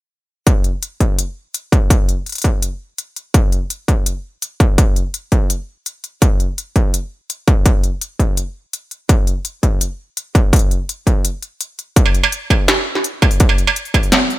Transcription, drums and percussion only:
0.47 kick loud
0.47 closed hi-hat medium
0.64 closed hi-hat soft
0.83 closed hi-hat medium
1.00 kick medium
1.00 closed hi-hat soft
1.19 closed hi-hat medium
1.54 closed hi-hat medium
1.72 kick loud
1.72 closed hi-hat soft
1.90 kick loud
1.90 closed hi-hat medium
2.09 closed hi-hat soft
2.26 closed hi-hat soft
2.29 closed hi-hat soft
2.32 closed hi-hat soft
2.35 closed hi-hat soft
2.38 closed hi-hat medium
2.42 kick medium
2.42 closed hi-hat medium
2.45 closed hi-hat soft
2.62 closed hi-hat medium
2.98 closed hi-hat medium
3.16 closed hi-hat soft
3.34 kick loud
3.34 closed hi-hat medium
3.52 closed hi-hat soft
3.70 closed hi-hat medium
3.88 kick medium
3.88 closed hi-hat soft
4.06 closed hi-hat medium
4.42 closed hi-hat medium
4.60 kick loud
4.60 closed hi-hat soft
4.78 kick loud
4.78 closed hi-hat medium
4.96 closed hi-hat soft
5.14 closed hi-hat medium
5.32 kick medium
5.32 closed hi-hat soft
5.50 closed hi-hat medium
5.86 closed hi-hat medium
6.04 closed hi-hat soft
6.22 kick loud
6.22 closed hi-hat medium
6.40 closed hi-hat soft
6.58 closed hi-hat medium
6.76 kick medium
6.76 closed hi-hat soft
6.94 closed hi-hat medium
7.30 closed hi-hat medium
7.48 kick loud
7.48 closed hi-hat soft
7.66 kick loud
7.66 closed hi-hat medium
7.84 closed hi-hat soft
8.01 closed hi-hat medium
8.19 kick medium
8.19 closed hi-hat soft
8.37 closed hi-hat medium
8.73 closed hi-hat medium
8.91 closed hi-hat soft
9.09 kick loud
9.09 closed hi-hat medium
9.27 closed hi-hat soft
9.45 closed hi-hat medium
9.63 kick medium
9.63 closed hi-hat soft
9.81 closed hi-hat medium
10.17 closed hi-hat medium
10.35 kick medium
10.35 closed hi-hat soft
10.53 kick loud
10.53 closed hi-hat medium
10.56 closed hi-hat medium
10.59 closed hi-hat soft
10.71 closed hi-hat soft
10.89 closed hi-hat medium
11.07 kick medium
11.07 closed hi-hat soft
11.25 closed hi-hat medium
11.43 closed hi-hat soft
11.61 closed hi-hat medium
11.79 closed hi-hat soft
11.96 kick loud
11.96 closed hi-hat medium
12.06 struck metal medium
12.15 closed hi-hat soft
12.24 struck metal medium
12.32 closed hi-hat medium
12.50 kick medium
12.50 closed hi-hat soft
12.50 struck metal soft
12.68 snare loud
12.68 closed hi-hat medium
12.95 snare soft
13.04 closed hi-hat medium
13.22 kick loud
13.22 closed hi-hat soft
13.22 struck metal medium
13.31 open hi-hat medium
13.40 kick loud
13.40 closed hi-hat medium
13.49 struck metal medium
13.58 closed hi-hat soft
13.67 struck metal medium
13.76 closed hi-hat medium
13.85 open hi-hat soft
13.94 kick medium
13.94 closed hi-hat soft
13.94 struck metal medium
14.03 open hi-hat soft
14.12 snare loud
14.12 closed hi-hat medium
14.30 open hi-hat soft

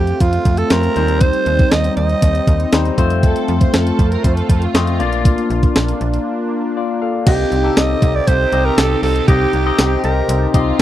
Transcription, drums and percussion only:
0.07 closed hi-hat soft
0.20 kick medium
0.20 closed hi-hat medium
0.33 closed hi-hat medium
0.45 kick medium
0.45 closed hi-hat medium
0.57 closed hi-hat medium
0.70 snare loud
0.70 closed hi-hat medium
0.83 closed hi-hat soft
0.96 closed hi-hat medium
1.08 closed hi-hat medium
1.21 kick loud
1.21 closed hi-hat medium
1.33 closed hi-hat medium
1.46 closed hi-hat medium
1.59 kick medium
1.59 closed hi-hat soft
1.72 snare loud
1.72 closed hi-hat medium
1.84 closed hi-hat medium
1.97 closed hi-hat medium
2.09 closed hi-hat soft
2.22 kick medium
2.22 closed hi-hat medium
2.35 closed hi-hat medium
2.47 kick medium
2.47 closed hi-hat medium
2.60 closed hi-hat medium
2.72 snare loud
2.72 closed hi-hat medium
2.85 closed hi-hat soft
2.98 kick medium
2.98 closed hi-hat medium
3.10 closed hi-hat medium
3.23 kick loud
3.23 closed hi-hat medium
3.36 closed hi-hat medium
3.48 closed hi-hat medium
3.61 kick medium
3.61 closed hi-hat soft
3.74 snare loud
3.74 closed hi-hat medium
3.87 closed hi-hat medium
3.99 kick medium
3.99 closed hi-hat medium
4.12 closed hi-hat soft
4.24 kick medium
4.24 closed hi-hat loud
4.37 closed hi-hat medium
4.49 kick medium
4.49 closed hi-hat medium
4.62 closed hi-hat medium
4.75 snare loud
4.75 closed hi-hat medium
4.87 closed hi-hat soft
5.00 closed hi-hat medium
5.13 closed hi-hat medium
5.25 kick loud
5.25 closed hi-hat medium
5.38 closed hi-hat medium
5.50 closed hi-hat medium
5.63 kick medium
5.63 closed hi-hat medium
5.76 snare loud
5.76 closed hi-hat medium
5.76 tambourine medium
5.88 closed hi-hat medium
6.01 closed hi-hat medium
6.14 closed hi-hat soft
7.27 kick loud
7.27 closed hi-hat medium
7.27 crash medium
7.52 closed hi-hat medium
7.77 snare loud
7.77 closed hi-hat medium
7.77 tambourine medium
8.02 kick loud
8.02 closed hi-hat medium
8.27 kick medium
8.27 closed hi-hat medium
8.52 closed hi-hat medium
8.78 snare loud
8.78 closed hi-hat medium
8.78 tambourine medium
9.03 open hi-hat medium
9.16 closed hi-hat medium
9.28 kick loud
9.28 closed hi-hat medium
9.53 closed hi-hat medium
9.78 snare loud
9.78 closed hi-hat medium
9.78 tambourine medium
10.04 closed hi-hat medium
10.29 closed hi-hat loud
10.54 kick medium
10.54 closed hi-hat medium

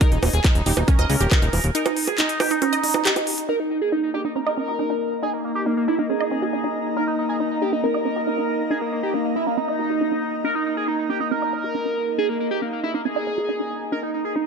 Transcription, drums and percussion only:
0.01 kick loud
0.01 closed hi-hat medium
0.12 closed hi-hat medium
0.23 open hi-hat loud
0.23 high bongo medium
0.34 closed hi-hat medium
0.44 kick loud
0.44 clap loud
0.44 closed hi-hat medium
0.44 high bongo soft
0.55 closed hi-hat medium
0.66 open hi-hat loud
0.77 closed hi-hat medium
0.77 high bongo medium
0.88 kick loud
0.88 closed hi-hat medium
0.99 closed hi-hat medium
0.99 high bongo soft
1.10 open hi-hat loud
1.20 closed hi-hat medium
1.31 kick loud
1.31 clap loud
1.31 closed hi-hat medium
1.31 high bongo medium
1.42 closed hi-hat medium
1.53 open hi-hat loud
1.53 high bongo soft
1.64 closed hi-hat medium
1.75 closed hi-hat medium
1.86 closed hi-hat medium
1.86 high bongo medium
1.97 open hi-hat loud
2.07 closed hi-hat medium
2.07 high bongo soft
2.18 clap loud
2.18 closed hi-hat medium
2.29 closed hi-hat medium
2.40 open hi-hat loud
2.40 high bongo medium
2.51 closed hi-hat medium
2.62 closed hi-hat medium
2.62 high bongo soft
2.73 closed hi-hat medium
2.84 open hi-hat loud
2.94 closed hi-hat medium
2.94 high bongo medium
3.05 clap loud
3.05 closed hi-hat medium
3.16 closed hi-hat medium
3.16 high bongo soft
3.27 open hi-hat loud
3.38 closed hi-hat medium

